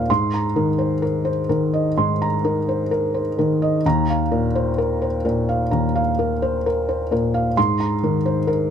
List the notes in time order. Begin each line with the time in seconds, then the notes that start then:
Already playing: D#2 A#4 C5 F5 A#5
0.10 G#2 C6
0.34 A#5
0.56 D#3 A#4
0.78 C5
1.02 A#4
1.25 C5
1.49 D#3 A#4
1.73 D#5
1.97 G#2 C6
2.22 A#5
2.44 D#4 A#4
2.69 C5
2.91 A#4
3.14 C5
3.39 D#3 A#4
3.62 D#5
3.86 D#2 A#5
4.10 F5
4.32 A#2 A#4
4.55 C5
4.78 A#4
5.02 C5
5.25 A#2 A#4
5.49 F5
5.71 D#2 A#5
5.95 F5
6.19 A#4
6.42 C5
6.66 A#4
6.89 C5
7.11 A#2 A#4
7.34 F5
7.57 G#2 C6
7.80 A#5
8.03 D#3 A#4
8.26 C5
8.47 A#4